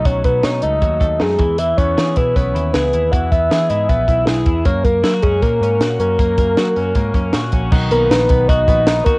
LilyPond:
<<
  \new Staff \with { instrumentName = "Soft synth lead" } { \time 4/4 \key b \major \tempo 4 = 156 cis''8 b'8 cis''8 dis''4. gis'4 | e''8 cis''4 b'8 cis''4 b'4 | fis''8 e''4 dis''8 e''4 e'4 | cis''8 ais'4 gis'8 ais'4. ais'8~ |
ais'2. r4 | r8 ais'8 b'4 dis''4. ais'8 | }
  \new Staff \with { instrumentName = "Clean electric guitar" } { \time 4/4 \key b \major <fis a dis'>8 fis8 dis'8 a8 fis8 a8 dis'8 e8 | e8 b8 gis'8 e'8 b8 e'8 gis'8 e'8 | e8 b8 gis'8 e'8 b8 e'8 gis'8 e'8 | ais8 ais8 e'16 fis'16 cis'8 ais8 cis'8 fis'8 cis'8 |
ais8 ais8 fis'8 cis'8 ais8 cis'8 fis'8 cis'8 | <dis fis'>8 b8 dis'8 b8 fis'8 b8 dis'8 fis'8 | }
  \new Staff \with { instrumentName = "Picked electric bass" } { \clef bass \time 4/4 \key b \major b,,8 b,,8 b,8 cis,8 dis,8 dis,8 fis,8 e,8~ | e,8 e,8 e8 b,8 b,,8 dis,8 cis,8 dis,8 | e,8 e,8 e8 gis,8 ais,,8 b,,8 b,,8 e,8 | fis,8 fis,8 fis8 fis,8 ais,8 gis,8 ais,8 fis,8 |
fis,8 fis,8 fis8 fis,8 gis,8 fis,8 ais,8 ais,,8 | b,,8 b,,8 ais,,8 b,,8 b,,8 ais,,4 r8 | }
  \new DrumStaff \with { instrumentName = "Drums" } \drummode { \time 4/4 <hh bd>8 <hh bd>8 <hh sn>8 hh8 <hh bd>8 <hh bd>8 <hh sn>8 <hh bd>8 | hh8 <hh bd>8 <hh sn>8 <hh bd>8 <hh bd>8 hh8 <hh sn>8 hh8 | <hh bd>8 <hh bd>8 <hh sn>8 hh8 <hh bd>8 <hh bd>8 <hh sn>8 <hh bd>8 | <hh bd>8 <hh bd>8 <hh sn>8 <hh bd>8 <hh bd>8 hh8 <hh sn>8 hh8 |
<hh bd>8 <hh bd>8 <hh sn>8 hh8 <hh bd>8 <hh bd>8 <hh sn>8 <hh bd>8 | <cymc bd>8 hh8 <hh sn>8 <hh bd>8 <hh bd>8 <hh bd>8 <hh sn>8 <hh bd>8 | }
>>